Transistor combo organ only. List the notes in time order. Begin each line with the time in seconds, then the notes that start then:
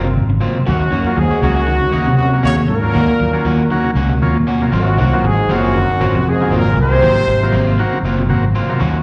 1.06 F#3 A#3 C#4 F4
1.42 F#3 A#3 C#4 G#4
1.92 F#3 A#3 C#4 D#4
2.33 F#3 A#3 C#4 F#4
2.82 F#3 A#3 C#4 F4
3.33 F#3 A#3 C#4 F4
3.71 F#3 A#3 C#4 F#4
4.22 F#3 A#3 C#4 F4
4.62 F#3 A#3 C#4 F4
5.13 F#3 A#3 C4 F4
5.50 F#3 A#3 C4 F4
6.00 F#3 A#3 C4 F#4
6.41 F#3 A#3 C4 F4
6.92 F#3 A#3 C4 G#4
7.43 F#3 A#3 C4 F4
7.79 F#3 A#3 C4 F#4
8.29 F#3 A#3 C4 F#4
8.69 F#3 A#3 C4 F4